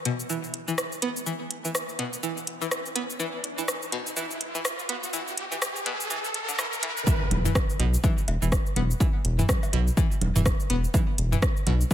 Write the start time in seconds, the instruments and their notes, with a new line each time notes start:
Already playing: riser
0.05 synth pluck B2, closed hi-hat
0.20 shaker
0.30 synth pluck E3, shaker
0.44 shaker
0.54 closed hi-hat
0.68 synth pluck E3, shaker
0.78 cross-stick, shaker
0.92 shaker
1.02 synth pluck B3, closed hi-hat
1.16 shaker
1.26 synth pluck E3, shaker
1.51 closed hi-hat
1.65 synth pluck E3, shaker
1.75 cross-stick, shaker
1.89 shaker
1.99 synth pluck B2, closed hi-hat
2.13 shaker
2.23 synth pluck E3, shaker
2.37 shaker
2.47 closed hi-hat
2.61 synth pluck E3, shaker
2.71 cross-stick, shaker
2.86 shaker
2.95 synth pluck B3, closed hi-hat
3.10 shaker
3.20 synth pluck E3, shaker
3.44 closed hi-hat
3.58 synth pluck E3, shaker
3.68 cross-stick, shaker
3.82 shaker
3.92 synth pluck B2, closed hi-hat
4.07 shaker
4.17 synth pluck E3, shaker
4.31 shaker
4.41 closed hi-hat
4.55 synth pluck E3, shaker
4.65 cross-stick, shaker
4.79 shaker
4.89 synth pluck B3, closed hi-hat
5.03 shaker
5.13 synth pluck E3, shaker
5.28 shaker
5.38 closed hi-hat
5.52 synth pluck E3, shaker
5.62 cross-stick, shaker
5.76 shaker
5.86 synth pluck B2, closed hi-hat
6.00 shaker
6.10 synth pluck E3, shaker
6.24 shaker
6.34 closed hi-hat
6.49 synth pluck D3, shaker
6.59 synth pluck E3, cross-stick, shaker
6.73 shaker
6.83 synth pluck E3, closed hi-hat
6.97 shaker
7.07 synth pluck E3, kick, impact, shaker
7.31 analog synth bass E1, closed hi-hat, high conga
7.45 synth pluck E3, mid tom, shaker
7.55 kick, cross-stick, shaker
7.70 shaker
7.80 analog synth bass B1, synth pluck B2, closed hi-hat
7.94 shaker
8.04 synth pluck E3, kick, high conga, shaker
8.18 shaker
8.28 analog synth bass E1, closed hi-hat, cowbell
8.42 analog synth bass E1, synth pluck E3, shaker
8.52 kick, cross-stick, shaker
8.66 shaker
8.76 analog synth bass E1, synth pluck B3, closed hi-hat, high conga
8.91 shaker
9.00 synth pluck E3, kick, shaker
9.25 analog synth bass E1, closed hi-hat
9.39 synth pluck E3, mid tom, shaker
9.49 kick, cross-stick, high conga, shaker
9.63 cowbell, shaker
9.73 analog synth bass B1, synth pluck B2, closed hi-hat
9.87 shaker
9.97 synth pluck E3, kick, shaker
10.12 shaker
10.21 analog synth bass E1, closed hi-hat, high conga
10.36 analog synth bass E1, synth pluck E3, mid tom, shaker
10.46 kick, cross-stick, shaker
10.60 shaker
10.70 analog synth bass E1, synth pluck B3, closed hi-hat
10.84 shaker
10.94 synth pluck E3, kick, cowbell, high conga, shaker
11.18 analog synth bass E1, closed hi-hat
11.32 synth pluck E3, mid tom, shaker
11.42 kick, cross-stick, shaker
11.57 shaker
11.67 analog synth bass B1, synth pluck B2, closed hi-hat, high conga
11.81 shaker
11.91 synth pluck E3, kick